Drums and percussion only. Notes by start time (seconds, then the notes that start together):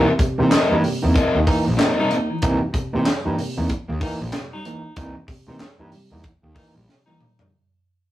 0.19 kick, closed hi-hat
0.52 snare, clap, closed hi-hat
0.84 open hi-hat
1.15 kick, closed hi-hat
1.47 kick, open hi-hat
1.79 snare, clap, closed hi-hat
2.11 closed hi-hat
2.42 kick, closed hi-hat
2.74 kick, closed hi-hat
3.06 snare, clap, closed hi-hat
3.38 open hi-hat
3.69 kick, closed hi-hat
4.01 kick, open hi-hat
4.33 snare, clap, closed hi-hat
4.65 closed hi-hat
4.96 kick, closed hi-hat
5.28 kick, open hi-hat
5.60 snare, clap, closed hi-hat
5.92 open hi-hat
6.24 kick, closed hi-hat
6.56 kick, open hi-hat
6.89 snare
7.07 high tom
7.20 mid tom
7.39 floor tom